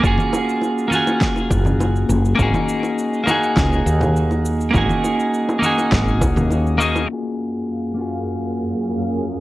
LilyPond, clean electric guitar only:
\new Staff \with { instrumentName = "Clean electric guitar" } { \time 4/4 \key ges \major \tempo 4 = 102 <bes des' f' ges' aes'>4. <bes des' f' ges' aes'>2~ <bes des' f' ges' aes'>8 | <bes des' ees' ges' aes'>4. <bes des' ees' ges' aes'>2~ <bes des' ees' ges' aes'>8 | <bes des' ees' ges' aes'>4. <bes des' ees' ges' aes'>2 <bes des' ees' ges' aes'>8 | <bes des' f' ges' aes'>4. <bes des' f' ges' aes'>2~ <bes des' f' ges' aes'>8 | }